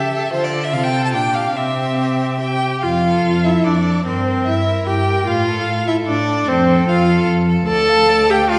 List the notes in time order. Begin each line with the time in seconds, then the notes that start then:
Already playing: C#3 G4 A4 E5
0.14 G4 A4
0.33 D3 F4 A4 C5
0.44 D5
0.64 E5
0.73 C3 F4 A4 F5
0.84 G5
1.05 A5
1.14 A#2 D4 G4 G5
1.35 F5
1.56 C3 C4 G4 E5
2.41 G4 G5
2.82 F2 F4 F5
3.03 A4
3.24 F2
3.44 E4 A4 E5
3.64 F2 D4 D5
3.85 A4
4.05 G2 C4 A#4 C5
4.26 A#4
4.46 G2 E4 E5
4.66 A#4
4.87 G2 G4 G5
5.06 A#4
5.27 A2 F4 F5
5.46 A4
5.67 A2
5.87 E4 A4 E5
6.07 A2 D4 D5
6.28 A4
6.48 F2 C4 A4 C5
6.69 A4
6.88 F2 F4 F5
7.08 A4
7.28 F2
7.48 A4
7.68 D2 A4 D5 A5
7.89 F5
8.09 D5
8.30 G4 F5 G5
8.50 F4 D5 F5